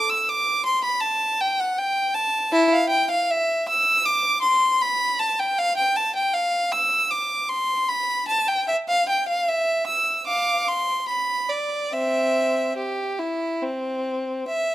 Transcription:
0.10 E6
0.29 D6
0.66 C6
0.84 B5
1.00 A5
1.41 G5
1.60 F#5
1.78 G5
2.14 A5
2.52 E4
2.73 F5
2.89 G5
3.11 F5
3.31 E5
3.69 E6
4.06 D6
4.42 C6
4.82 B5
5.19 A5
5.39 G5
5.59 F5
5.77 G5
5.96 A5
6.15 G5
6.34 F5
6.72 E6
7.11 D6
7.49 C6
7.88 B5
8.28 A5
8.48 G5
8.68 E5
8.88 F5
9.09 G5
9.28 F5
9.49 E5
9.87 E6
10.27 F5 D6
10.68 C6
11.08 B5
11.50 D5
11.93 C4 E5
12.77 G4
13.19 E4
13.62 C4
14.48 E5

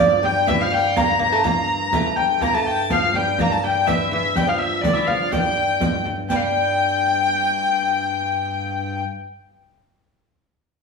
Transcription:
Already playing: G2 F3 D5
0.23 G3 G5, frame drum
0.47 E3 E5, riq, frame drum
0.59 F3 F5
0.71 G3 G5, frame drum
0.96 A#3 A#5, riq, frame drum
1.19 A#3 A#5, frame drum
1.32 A3 A5
1.43 A#3 A#5, riq, frame drum
1.69 frame drum
1.93 A3, riq, frame drum
2.16 G5, frame drum
2.41 G2 A#3 A#5, riq, frame drum
2.54 A3 A5
2.65 G5, frame drum
2.90 F3 F5, riq, frame drum
3.14 G3 G5, frame drum
3.38 A#3 A#5, riq, frame drum
3.52 A5
3.64 G3 G5, frame drum
3.87 E3 E5, riq, frame drum
4.11 E3 E5, frame drum
4.35 G3 G5, riq, frame drum
4.47 F3 F5
4.58 E5, frame drum
4.81 D3 D5, riq, frame drum
4.94 E3 E5
5.07 F3 F5, frame drum
5.32 G3 G5, riq, frame drum
5.81 riq, frame drum
6.05 frame drum
6.29 G2 G3 G5, riq, frame drum
6.36 F5
6.43 G5

